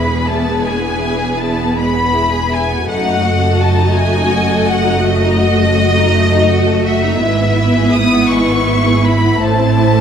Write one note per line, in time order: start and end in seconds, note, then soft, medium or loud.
0.00 2.84 E1 soft
0.00 2.83 E2 soft
0.00 2.84 B3 soft
0.00 2.84 G#4 soft
0.00 2.83 B4 soft
0.00 0.27 B5 medium
0.08 0.27 G#4 soft
0.26 0.46 E4 soft
0.26 0.64 A5 medium
0.44 0.64 B3 soft
0.62 0.81 G#3 soft
0.62 1.39 G#5 medium
0.82 1.01 B3 soft
0.99 1.19 E4 soft
1.18 1.38 G#4 soft
1.37 1.57 E4 soft
1.37 1.77 A5 medium
1.56 1.76 B3 soft
1.74 1.94 G#3 soft
1.74 2.50 B5 medium
1.93 2.13 B3 soft
2.13 2.32 E4 soft
2.30 2.50 G#4 soft
2.49 2.68 E4 soft
2.49 2.88 G#5 medium
2.67 2.87 B3 soft
2.85 7.18 F#1 medium
2.85 7.18 F#2 soft
2.85 3.03 A3 soft
2.85 7.18 A3 medium
2.85 7.18 F#4 medium
2.85 7.21 D#5 soft
2.85 3.59 F#5 medium
3.03 3.22 D#4 soft
3.23 3.42 F#4 soft
3.40 3.59 A4 soft
3.58 3.77 F#4 soft
3.58 3.97 A5 medium
3.77 3.95 D#4 soft
3.95 4.14 A3 soft
3.95 4.69 G#5 medium
4.14 4.33 D#4 soft
4.31 4.50 F#4 soft
4.49 4.68 A4 soft
4.67 4.87 F#4 soft
4.67 5.07 F#5 medium
4.85 5.05 D#4 soft
5.03 5.21 A3 soft
5.03 6.86 D#5 medium
5.22 5.41 D#4 soft
5.39 5.59 F#4 soft
5.58 5.78 A4 soft
5.77 5.96 F#4 soft
5.96 6.15 D#4 soft
6.13 6.31 A3 medium
6.31 6.50 D#4 soft
6.48 6.67 F#4 soft
6.66 6.85 A4 soft
6.85 7.04 F#4 soft
6.85 7.92 E5 medium
7.02 7.21 D#4 soft
7.21 9.36 G#1 medium
7.21 9.36 G#2 medium
7.21 7.38 G#3 medium
7.21 9.40 B3 medium
7.21 10.01 E4 medium
7.21 9.40 B4 medium
7.39 7.58 B3 soft
7.57 7.76 E4 soft
7.77 7.95 G#4 soft
7.93 8.13 E4 soft
7.93 8.30 D#6 medium
8.13 8.31 B3 soft
8.29 8.49 G#3 soft
8.29 9.02 C#6 medium
8.49 8.67 B3 soft
8.69 8.86 E4 soft
8.86 9.04 G#4 soft
9.04 9.22 E4 soft
9.04 9.41 B5 medium
9.24 9.41 B3 soft
9.40 10.01 A1 soft
9.40 10.01 A2 soft
9.40 10.01 A3 soft
9.40 9.58 A3 soft
9.40 10.01 C5 soft
9.40 10.01 A5 medium
9.59 9.78 C4 soft
9.78 9.97 E4 soft
9.97 10.01 A4 soft